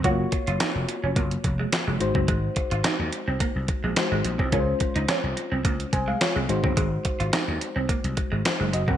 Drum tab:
HH |x-xxx-x-xxx-x-x-|x-xxx-x-x-x-x-x-|x-xxx-x-xxx-x-x-|x-xxx-x-xxx-x-x-|
CP |----x-------x---|----x-------x---|----x-------x---|----x-------x---|
SD |----o-------o---|----o-------o---|----o-------o---|----o-------o---|
BD |o-o-----o-o----o|o-o-----o-o----o|o-o-----o-o----o|o-o-----o-o----o|